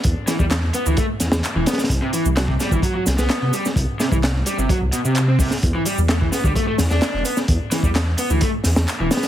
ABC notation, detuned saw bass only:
X:1
M:4/4
L:1/16
Q:1/4=129
K:Em
V:1 name="Detuned saw bass" clef=bass
E,, z2 E,,3 z D,, z2 E,, E,, z E,,, z2 | C,, z2 C,,3 z G,,, z2 C,, C,, z C, z2 | C,, z2 C,,3 z G,,, z C,, z C,3 C,, z | E,, z2 E,,3 z D,, z2 E,, E,, z E,,, z2 |
E,, z2 E,,3 z D,, z2 E,, E,, z E,,, z2 |]